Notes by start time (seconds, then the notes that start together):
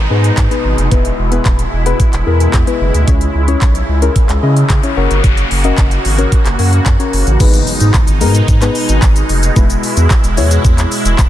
Already playing: B2 G#3 D#4, downlifter
0.10 G#2 B3 D#4 G#4 B4
0.24 closed hi-hat
0.37 G#2, kick, clap, closed hi-hat
0.51 B3 D#4 G#4 B4, closed hi-hat
0.64 G#1
0.78 F1, closed hi-hat
0.91 E1 B3 E4 G#4 B4, kick, closed hi-hat
1.05 closed hi-hat
1.19 E1
1.32 B3 E4 G#4 B4, closed hi-hat
1.45 D#1, kick, clap, closed hi-hat
1.59 closed hi-hat
1.73 E1
1.86 B3 E4 G#4 B4, closed hi-hat
2.00 kick, closed hi-hat
2.13 E1, clap, closed hi-hat
2.26 E2 B3 E4 G#4 A#4
2.40 closed hi-hat
2.54 E2, kick, clap, closed hi-hat
2.67 B3 E4 G#4 B4, closed hi-hat
2.81 F#1
2.94 D2, closed hi-hat
3.07 C#2 C#3 C#4 E4 G#4 C#5, kick, closed hi-hat, noise sweep
3.21 closed hi-hat
3.35 C#2
3.48 C#4 E4 G#4 C#5, closed hi-hat
3.61 B1, kick, clap, closed hi-hat
3.75 closed hi-hat
3.89 C#2
4.02 C#4 E4 G#4 A#4, closed hi-hat
4.16 kick, closed hi-hat
4.29 C#2, clap, closed hi-hat
4.43 C#3 C#4 E4 G#4 D#5
4.57 closed hi-hat
4.70 C#3, kick, clap, closed hi-hat
4.83 C#4 E4 G#4 C#5, closed hi-hat
4.96 F#1 A#3 C#4 F#4 A#4 C#5
5.11 G1, closed hi-hat
5.24 F#1, kick, closed hi-hat
5.37 closed hi-hat
5.51 F#1, open hi-hat
5.64 C#4 F#4 A#4 D#5, closed hi-hat
5.78 F#1, kick, clap, closed hi-hat
5.91 closed hi-hat
6.05 G#1, open hi-hat
6.18 C#4 F#4 A#4 C#5, closed hi-hat
6.32 kick, closed hi-hat
6.46 F#1, clap, closed hi-hat
6.59 F#2 C#4 F#4 A#4 C#5, open hi-hat
6.73 closed hi-hat
6.86 F#2, kick, clap, closed hi-hat
6.99 C#4 F#4 A#4 C#5, closed hi-hat
7.13 F#1, open hi-hat
7.27 A1, closed hi-hat
7.40 G#1 B2 G#3 B3 D#4 G#4 B4, kick, crash, impact, shaker
7.54 closed hi-hat, shaker
7.67 open hi-hat, shaker
7.80 G#2, closed hi-hat, shaker
7.94 kick, clap, shaker
8.07 G#1, closed hi-hat, shaker
8.21 G#2 G#3 B3 D#4 G#4 A#4, open hi-hat, shaker
8.35 closed hi-hat, shaker
8.48 G#2, kick, shaker
8.61 G#3 B3 D#4 G#4 B4, clap, closed hi-hat, shaker
8.75 open hi-hat, shaker
8.89 G#1, closed hi-hat, shaker
9.02 G#1, kick, clap, shaker
9.16 closed hi-hat, shaker
9.29 F1, open hi-hat, shaker
9.43 closed hi-hat, shaker
9.56 E1 G#3 B3 E4 G#4 B4, kick, shaker
9.70 closed hi-hat, shaker
9.83 open hi-hat, shaker
9.97 E2, closed hi-hat, shaker
10.10 kick, clap, shaker
10.24 E1, closed hi-hat, shaker
10.37 E2 G#3 B3 E4 G#4 C#5, open hi-hat, shaker
10.51 closed hi-hat, shaker
10.65 E2, kick, shaker
10.78 clap, closed hi-hat, shaker
10.92 open hi-hat, shaker
11.05 E1, closed hi-hat, shaker
11.19 E1, kick, clap, shaker